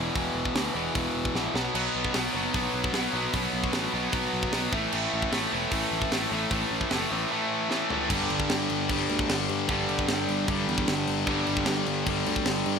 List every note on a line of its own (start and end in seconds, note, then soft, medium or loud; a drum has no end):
0.00 0.14 E2 medium
0.00 0.15 B2 loud
0.00 0.15 E3 medium
0.15 0.28 E1 medium
0.15 0.54 E2 loud
0.15 0.54 B2 loud
0.15 0.55 E3 loud
0.15 kick loud
0.15 open hi-hat soft
0.35 0.48 E1 loud
0.45 kick medium
0.55 0.68 D2 medium
0.55 0.73 E2 medium
0.55 0.74 B2 medium
0.55 0.75 E3 medium
0.55 snare loud
0.55 open hi-hat medium
0.74 0.88 E1 medium
0.74 0.93 E2 medium
0.74 0.94 B2 medium
0.74 0.95 E3 loud
0.95 1.08 E1 medium
0.95 1.34 E2 loud
0.95 1.34 B2 loud
0.95 1.35 E3 loud
0.95 kick loud
0.95 open hi-hat medium
1.15 1.28 E1 medium
1.25 kick medium
1.34 1.47 A#1 medium
1.34 1.54 E2 medium
1.34 1.54 B2 medium
1.34 1.54 E3 medium
1.34 snare medium
1.54 1.67 B1 medium
1.54 1.74 B2 loud
1.54 1.75 F#3 medium
1.54 1.75 B3 loud
1.54 snare loud
1.74 1.87 B1 loud
1.74 2.13 B2 loud
1.74 2.14 F#3 loud
1.74 2.15 B3 loud
1.74 crash medium
1.95 2.08 B1 medium
2.05 kick medium
2.14 2.28 B1 medium
2.14 2.33 B2 medium
2.14 2.33 F#3 medium
2.14 2.34 B3 loud
2.14 snare loud
2.14 open hi-hat medium
2.34 2.48 F#1 medium
2.34 2.52 B2 loud
2.34 2.53 F#3 medium
2.34 2.53 B3 medium
2.53 2.67 B1 medium
2.53 2.92 B2 medium
2.53 2.93 F#3 loud
2.53 2.94 B3 loud
2.53 kick loud
2.53 open hi-hat medium
2.74 2.87 B1 loud
2.84 kick loud
2.93 3.06 B1 medium
2.93 3.12 B2 medium
2.93 3.13 F#3 loud
2.93 3.14 B3 medium
2.93 snare loud
2.93 open hi-hat medium
3.13 3.27 B1 loud
3.13 3.32 B2 medium
3.13 3.33 F#3 medium
3.13 3.33 B3 medium
3.33 3.47 B1 loud
3.33 3.71 B2 medium
3.33 3.72 F#3 medium
3.33 3.73 B3 loud
3.33 kick loud
3.33 open hi-hat medium
3.53 3.66 B1 medium
3.64 kick medium
3.73 3.87 A1 medium
3.73 3.92 B2 medium
3.73 3.93 F#3 loud
3.73 3.94 B3 loud
3.73 snare loud
3.73 open hi-hat medium
3.93 4.07 B1 loud
3.93 4.11 B2 medium
3.93 4.12 F#3 medium
3.93 4.12 B3 loud
4.12 4.26 B1 loud
4.12 4.51 B2 loud
4.12 4.52 F#3 loud
4.12 4.53 B3 loud
4.12 kick loud
4.12 open hi-hat medium
4.33 4.46 B1 medium
4.43 kick loud
4.53 4.67 B1 medium
4.53 4.72 B2 medium
4.53 4.72 F#3 medium
4.53 4.72 B3 medium
4.53 snare loud
4.53 open hi-hat medium
4.72 4.85 A1 loud
4.72 4.92 A2 loud
4.72 4.93 E3 loud
4.72 4.93 A3 loud
4.72 kick loud
4.92 5.06 A1 loud
4.92 5.31 A2 medium
4.92 5.32 E3 loud
4.92 5.33 A3 loud
4.92 crash medium
5.14 5.26 A1 medium
5.22 kick medium
5.32 5.45 A1 loud
5.32 5.51 A2 medium
5.32 5.52 E3 medium
5.32 5.52 A3 loud
5.32 snare loud
5.32 open hi-hat medium
5.51 5.66 E1 medium
5.51 5.70 A2 medium
5.51 5.70 E3 medium
5.51 5.71 A3 loud
5.71 5.85 A1 medium
5.71 6.10 A2 loud
5.71 6.11 E3 loud
5.71 6.11 A3 loud
5.71 kick loud
5.71 open hi-hat medium
5.91 6.05 A1 loud
6.02 kick medium
6.11 6.25 A1 medium
6.11 6.29 A2 medium
6.11 6.30 E3 loud
6.11 6.30 A3 loud
6.11 snare loud
6.11 open hi-hat medium
6.30 6.45 A1 loud
6.30 6.49 A2 medium
6.30 6.50 E3 medium
6.30 6.51 A3 medium
6.51 6.64 A1 medium
6.51 6.90 A2 medium
6.51 6.91 E3 loud
6.51 6.92 A3 loud
6.51 kick loud
6.51 open hi-hat medium
6.71 6.84 A1 medium
6.81 kick medium
6.91 7.04 F#1 medium
6.91 7.10 A2 loud
6.91 7.10 E3 medium
6.91 7.11 A3 loud
6.91 snare loud
6.91 open hi-hat medium
7.11 7.24 A1 medium
7.11 7.30 A2 medium
7.11 7.31 E3 medium
7.11 7.32 A3 medium
7.31 7.69 A2 loud
7.31 7.70 E3 medium
7.31 7.71 A3 loud
7.70 7.89 A2 loud
7.70 7.89 E3 medium
7.70 7.90 A3 medium
7.70 snare medium
7.90 8.09 A2 medium
7.90 8.09 E3 medium
7.90 8.10 A3 loud
7.90 floor tom medium
8.09 8.26 G1 loud
8.09 8.89 G2 medium
8.09 8.89 D3 loud
8.09 kick loud
8.09 crash loud
8.09 crash medium
8.14 8.92 G3 loud
8.30 8.47 G1 loud
8.30 crash medium
8.40 kick medium
8.50 8.66 G1 medium
8.50 snare loud
8.50 crash loud
8.70 8.86 G1 loud
8.70 crash medium
8.89 9.06 G1 loud
8.89 9.68 G2 medium
8.89 9.69 D3 medium
8.89 9.72 G3 loud
8.89 kick loud
8.89 crash loud
9.09 9.26 D2 medium
9.09 crash medium
9.19 kick loud
9.29 9.46 G1 medium
9.29 snare loud
9.29 crash loud
9.49 9.66 G2 loud
9.49 crash medium
9.68 9.85 G1 medium
9.68 10.47 G2 medium
9.68 10.48 D3 medium
9.68 10.51 G3 loud
9.68 kick loud
9.68 crash medium
9.89 10.06 G1 loud
9.89 crash medium
9.99 kick medium
10.08 10.25 G1 loud
10.08 snare loud
10.08 crash medium
10.28 10.45 G1 loud
10.28 crash medium
10.47 10.65 G1 loud
10.47 11.26 G2 medium
10.47 11.27 D3 medium
10.47 kick loud
10.47 crash medium
10.52 11.29 G3 loud
10.68 10.85 E2 loud
10.68 crash medium
10.78 kick loud
10.88 11.04 G1 loud
10.88 snare loud
10.88 crash loud
11.07 11.24 G1 loud
11.07 crash medium
11.26 11.44 G1 medium
11.26 12.05 G2 loud
11.26 12.06 D3 medium
11.26 12.07 G3 loud
11.26 kick loud
11.26 crash medium
11.47 11.64 G1 loud
11.47 crash medium
11.57 kick medium
11.66 11.84 G1 loud
11.66 snare loud
11.66 crash loud
11.86 12.03 G1 medium
11.86 crash medium
12.06 12.23 G1 loud
12.06 12.79 G2 medium
12.06 12.79 D3 medium
12.06 12.79 G3 loud
12.06 kick loud
12.06 crash loud
12.26 12.43 D2 loud
12.26 crash medium
12.36 kick loud
12.46 12.63 G1 loud
12.46 snare loud
12.46 crash loud
12.66 12.79 G2 loud
12.66 crash medium